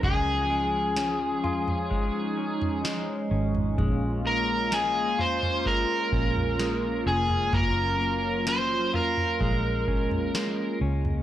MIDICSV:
0, 0, Header, 1, 6, 480
1, 0, Start_track
1, 0, Key_signature, -5, "minor"
1, 0, Tempo, 937500
1, 17, Time_signature, 4, 2, 24, 8
1, 5749, End_track
2, 0, Start_track
2, 0, Title_t, "Electric slide guitar"
2, 0, Program_c, 0, 29
2, 22, Note_on_c, 0, 68, 69
2, 1439, Note_off_c, 0, 68, 0
2, 2185, Note_on_c, 0, 70, 89
2, 2424, Note_on_c, 0, 68, 75
2, 2428, Note_off_c, 0, 70, 0
2, 2665, Note_on_c, 0, 72, 93
2, 2668, Note_off_c, 0, 68, 0
2, 2902, Note_on_c, 0, 70, 95
2, 2908, Note_off_c, 0, 72, 0
2, 3599, Note_off_c, 0, 70, 0
2, 3622, Note_on_c, 0, 68, 90
2, 3862, Note_on_c, 0, 70, 96
2, 3867, Note_off_c, 0, 68, 0
2, 4343, Note_off_c, 0, 70, 0
2, 4345, Note_on_c, 0, 72, 84
2, 4564, Note_off_c, 0, 72, 0
2, 4585, Note_on_c, 0, 70, 74
2, 5520, Note_off_c, 0, 70, 0
2, 5749, End_track
3, 0, Start_track
3, 0, Title_t, "Clean electric guitar"
3, 0, Program_c, 1, 27
3, 0, Note_on_c, 1, 61, 42
3, 0, Note_on_c, 1, 66, 57
3, 15, Note_on_c, 1, 56, 65
3, 64, Note_off_c, 1, 66, 0
3, 253, Note_off_c, 1, 56, 0
3, 255, Note_on_c, 1, 56, 56
3, 493, Note_off_c, 1, 61, 0
3, 495, Note_on_c, 1, 61, 54
3, 736, Note_on_c, 1, 65, 60
3, 972, Note_off_c, 1, 56, 0
3, 974, Note_on_c, 1, 56, 59
3, 1213, Note_off_c, 1, 61, 0
3, 1215, Note_on_c, 1, 61, 48
3, 1453, Note_off_c, 1, 56, 0
3, 1455, Note_on_c, 1, 56, 48
3, 1692, Note_off_c, 1, 61, 0
3, 1694, Note_on_c, 1, 61, 47
3, 1934, Note_off_c, 1, 56, 0
3, 1936, Note_on_c, 1, 56, 67
3, 2169, Note_off_c, 1, 56, 0
3, 2175, Note_on_c, 1, 56, 47
3, 2413, Note_off_c, 1, 61, 0
3, 2415, Note_on_c, 1, 61, 49
3, 2528, Note_off_c, 1, 65, 0
3, 2654, Note_on_c, 1, 65, 62
3, 2890, Note_off_c, 1, 56, 0
3, 2896, Note_on_c, 1, 56, 57
3, 3132, Note_off_c, 1, 61, 0
3, 3135, Note_on_c, 1, 61, 44
3, 3368, Note_off_c, 1, 56, 0
3, 3374, Note_on_c, 1, 56, 60
3, 3613, Note_off_c, 1, 61, 0
3, 3615, Note_on_c, 1, 61, 49
3, 3853, Note_off_c, 1, 56, 0
3, 3855, Note_on_c, 1, 58, 66
3, 4092, Note_off_c, 1, 58, 0
3, 4094, Note_on_c, 1, 58, 46
3, 4332, Note_off_c, 1, 61, 0
3, 4334, Note_on_c, 1, 61, 49
3, 4446, Note_off_c, 1, 65, 0
3, 4575, Note_on_c, 1, 65, 58
3, 4813, Note_off_c, 1, 58, 0
3, 4815, Note_on_c, 1, 56, 69
3, 4864, Note_off_c, 1, 65, 0
3, 5055, Note_off_c, 1, 61, 0
3, 5057, Note_on_c, 1, 61, 49
3, 5290, Note_off_c, 1, 56, 0
3, 5297, Note_on_c, 1, 56, 54
3, 5535, Note_off_c, 1, 61, 0
3, 5537, Note_on_c, 1, 61, 47
3, 5749, Note_off_c, 1, 56, 0
3, 5749, Note_off_c, 1, 61, 0
3, 5749, End_track
4, 0, Start_track
4, 0, Title_t, "Analog synth pad"
4, 0, Program_c, 2, 89
4, 0, Note_on_c, 2, 61, 72
4, 17, Note_on_c, 2, 56, 65
4, 18, Note_on_c, 2, 53, 71
4, 19, Note_on_c, 2, 65, 73
4, 968, Note_off_c, 2, 65, 0
4, 978, Note_on_c, 2, 63, 84
4, 1918, Note_off_c, 2, 53, 0
4, 1928, Note_off_c, 2, 63, 0
4, 1937, Note_on_c, 2, 65, 83
4, 1938, Note_on_c, 2, 58, 61
4, 3836, Note_off_c, 2, 56, 0
4, 3859, Note_on_c, 2, 54, 65
4, 4808, Note_off_c, 2, 54, 0
4, 4814, Note_on_c, 2, 56, 64
4, 5749, Note_off_c, 2, 56, 0
4, 5749, Note_off_c, 2, 58, 0
4, 5749, Note_off_c, 2, 61, 0
4, 5749, Note_off_c, 2, 65, 0
4, 5749, End_track
5, 0, Start_track
5, 0, Title_t, "Fingered electric bass"
5, 0, Program_c, 3, 33
5, 16, Note_on_c, 3, 37, 85
5, 1676, Note_off_c, 3, 37, 0
5, 1696, Note_on_c, 3, 32, 91
5, 1924, Note_off_c, 3, 32, 0
5, 1936, Note_on_c, 3, 34, 89
5, 3116, Note_off_c, 3, 34, 0
5, 3136, Note_on_c, 3, 34, 69
5, 3596, Note_off_c, 3, 34, 0
5, 3615, Note_on_c, 3, 29, 85
5, 3844, Note_off_c, 3, 29, 0
5, 3856, Note_on_c, 3, 30, 84
5, 4796, Note_off_c, 3, 30, 0
5, 4816, Note_on_c, 3, 34, 88
5, 5276, Note_off_c, 3, 34, 0
5, 5536, Note_on_c, 3, 37, 85
5, 5749, Note_off_c, 3, 37, 0
5, 5749, End_track
6, 0, Start_track
6, 0, Title_t, "Drums"
6, 16, Note_on_c, 9, 36, 96
6, 17, Note_on_c, 9, 43, 81
6, 68, Note_off_c, 9, 36, 0
6, 68, Note_off_c, 9, 43, 0
6, 494, Note_on_c, 9, 38, 89
6, 545, Note_off_c, 9, 38, 0
6, 738, Note_on_c, 9, 43, 56
6, 789, Note_off_c, 9, 43, 0
6, 859, Note_on_c, 9, 43, 70
6, 910, Note_off_c, 9, 43, 0
6, 978, Note_on_c, 9, 36, 73
6, 1029, Note_off_c, 9, 36, 0
6, 1339, Note_on_c, 9, 43, 62
6, 1390, Note_off_c, 9, 43, 0
6, 1458, Note_on_c, 9, 38, 83
6, 1509, Note_off_c, 9, 38, 0
6, 1816, Note_on_c, 9, 43, 55
6, 1867, Note_off_c, 9, 43, 0
6, 1937, Note_on_c, 9, 36, 79
6, 1938, Note_on_c, 9, 43, 93
6, 1988, Note_off_c, 9, 36, 0
6, 1989, Note_off_c, 9, 43, 0
6, 2417, Note_on_c, 9, 38, 102
6, 2468, Note_off_c, 9, 38, 0
6, 2658, Note_on_c, 9, 43, 62
6, 2709, Note_off_c, 9, 43, 0
6, 2779, Note_on_c, 9, 43, 68
6, 2830, Note_off_c, 9, 43, 0
6, 2897, Note_on_c, 9, 36, 67
6, 2948, Note_off_c, 9, 36, 0
6, 3136, Note_on_c, 9, 36, 73
6, 3187, Note_off_c, 9, 36, 0
6, 3257, Note_on_c, 9, 43, 62
6, 3308, Note_off_c, 9, 43, 0
6, 3377, Note_on_c, 9, 38, 84
6, 3428, Note_off_c, 9, 38, 0
6, 3735, Note_on_c, 9, 43, 52
6, 3786, Note_off_c, 9, 43, 0
6, 3855, Note_on_c, 9, 43, 92
6, 3856, Note_on_c, 9, 36, 86
6, 3906, Note_off_c, 9, 43, 0
6, 3907, Note_off_c, 9, 36, 0
6, 4336, Note_on_c, 9, 38, 99
6, 4387, Note_off_c, 9, 38, 0
6, 4577, Note_on_c, 9, 43, 67
6, 4628, Note_off_c, 9, 43, 0
6, 4697, Note_on_c, 9, 43, 65
6, 4749, Note_off_c, 9, 43, 0
6, 4817, Note_on_c, 9, 36, 67
6, 4868, Note_off_c, 9, 36, 0
6, 5057, Note_on_c, 9, 36, 74
6, 5108, Note_off_c, 9, 36, 0
6, 5178, Note_on_c, 9, 43, 57
6, 5229, Note_off_c, 9, 43, 0
6, 5298, Note_on_c, 9, 38, 89
6, 5349, Note_off_c, 9, 38, 0
6, 5657, Note_on_c, 9, 43, 53
6, 5708, Note_off_c, 9, 43, 0
6, 5749, End_track
0, 0, End_of_file